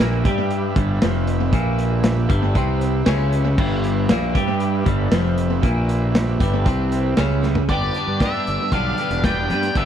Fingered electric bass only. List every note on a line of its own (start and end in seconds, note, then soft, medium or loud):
0.00 0.24 A#1 medium
0.25 0.73 G2 loud
0.77 1.00 G1 medium
1.03 1.51 F1 medium
1.53 2.26 A#1 medium
2.29 2.54 G1 loud
2.55 3.03 C2 medium
3.07 3.55 C#2 loud
3.58 4.06 G1 loud
4.11 4.34 A#1 loud
4.35 4.83 G2 loud
4.86 5.10 G1 medium
5.12 5.59 F1 medium
5.63 6.36 A#1 loud
6.40 6.64 G1 loud
6.67 7.14 C2 medium
7.18 7.66 C#2 medium
7.69 7.89 G1 medium
8.07 8.28 G2 medium
8.48 8.57 G1 medium
8.72 8.92 B1 medium
9.10 9.50 E1 loud
9.49 9.69 G2 medium
9.76 9.85 G1 medium